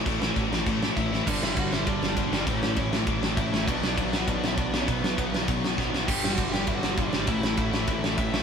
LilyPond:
<<
  \new Staff \with { instrumentName = "Lead electric guitar" } { \time 4/4 \key g \lydian \tempo 4 = 199 r2. <e' e''>4 | <d' d''>8 <e' e''>8 <fis' fis''>8 <e' e''>8 <d' d''>2 | <cis' cis''>4. r4. <e' e''>4 | \tuplet 3/2 { <d' d''>4 <d' d''>8~ <d' d''>4 <fis' fis''>8 <d' d''>4 <e' e''>8 } <d' d''>8. <cis' cis''>16 |
<b b'>4. r2 r8 | <g' g''>8. <fis' fis''>8. <g' g''>8 <e' e''>16 <fis' fis''>8. <d' d''>4 | <e' e''>2. <e' e''>4 | }
  \new Staff \with { instrumentName = "Distorted electric guitar" } { \clef bass \time 4/4 \key g \lydian <a, e a>8 <a, e a>8 <a, e a>8 <a, e a>8 <a, e a>8 <a, e a>8 <a, e a>8 <a, e a>8 | <g, d g>4 <g, d g>8 <g, d g>8 <g, d g>4 <g, d g>8 <g, d g>8 | <a, e a>4 <a, e a>8 <a, e a>8 <a, e a>4 <a, e a>8 <a, e a>8 | <b, fis b>4 <b, fis b>8 <b, fis b>8 <b, fis b>4 <b, fis b>8 <b, fis b>8 |
<b, fis b>4 <b, fis b>8 <b, fis b>8 <b, fis b>4 <b, fis b>8 <b, fis b>8 | <g, d g>4 <g, d g>8 <g, d g>8 <g, d g>4 <g, d g>8 <g, d g>8 | <a, e a>4 <a, e a>8 <a, e a>8 <a, e a>4 <a, e a>8 <a, e a>8 | }
  \new Staff \with { instrumentName = "Overdriven electric guitar" } { \clef bass \time 4/4 \key g \lydian <a, e a>8 <a, e a>8 <a, e a>8 <a, e a>8 <a, e a>8 <a, e a>8 <a, e a>8 <a, e a>8 | <g, d g>4 <g, d g>8 <g, d g>8 <g, d g>4 <g, d g>8 <g, d g>8 | <a, e a>4 <a, e a>8 <a, e a>8 <a, e a>4 <a, e a>8 <a, e a>8 | <b, fis b>4 <b, fis b>8 <b, fis b>8 <b, fis b>4 <b, fis b>8 <b, fis b>8 |
<b, fis b>4 <b, fis b>8 <b, fis b>8 <b, fis b>4 <b, fis b>8 <b, fis b>8 | <g, d g>4 <g, d g>8 <g, d g>8 <g, d g>4 <g, d g>8 <g, d g>8 | <a, e a>4 <a, e a>8 <a, e a>8 <a, e a>4 <a, e a>8 <a, e a>8 | }
  \new Staff \with { instrumentName = "Overdriven electric guitar" } { \clef bass \time 4/4 \key g \lydian <a, e a>4. <a, e a>2~ <a, e a>8 | <g, d g>2.~ <g, d g>8 <g, d g>8 | <a, e a>2.~ <a, e a>8 <a, e a>8 | <b, fis b>2.~ <b, fis b>8 <b, fis b>8 |
<b, fis b>2.~ <b, fis b>8 <b, fis b>8 | <g, d g>2.~ <g, d g>8 <g, d g>8 | <a, e a>2.~ <a, e a>8 <a, e a>8 | }
  \new Staff \with { instrumentName = "Picked electric bass" } { \clef bass \time 4/4 \key g \lydian a,,4 a,,8 a,,8 a,,4 a,,4 | g,,8 g,,8 g,,4 g,,4 g,,8 g,,8 | a,,8 a,,8 a,,4 a,,4 a,,8 a,,8 | b,,8 b,,8 b,,4 b,,4 b,,8 b,,8 |
b,,8 b,,8 b,,4 b,,4 b,,8 b,,8 | g,,8 g,,8 g,,4 g,,4 g,,8 gis,,8 | a,,8 a,,8 a,,4 a,,4 a,,8 bes,,8 | }
  \new DrumStaff \with { instrumentName = "Drums" } \drummode { \time 4/4 <cymc bd>8 sn8 <cymc bd>8 sn8 <cymc bd>8 sn8 <cymc bd>8 sn8 | <cymc bd>8 sn8 <bd cymr>8 sn8 <bd cymr>8 sn8 <bd cymr>8 sn8 | <bd cymr>8 sn8 <bd cymr>8 sn8 <bd cymr>8 sn8 <bd cymr>8 sn8 | <bd cymr>8 sn8 <bd cymr>8 sn8 <bd cymr>8 sn8 <bd cymr>8 sn8 |
<bd cymr>8 sn8 <bd cymr>8 sn8 <bd cymr>8 sn8 <bd sn>8 sn8 | <cymc bd>8 sn8 <bd cymr>8 sn8 <bd cymr>8 sn8 <bd cymr>8 sn8 | <bd cymr>8 sn8 <bd cymr>8 sn8 <bd cymr>8 sn8 <bd cymr>8 sn8 | }
>>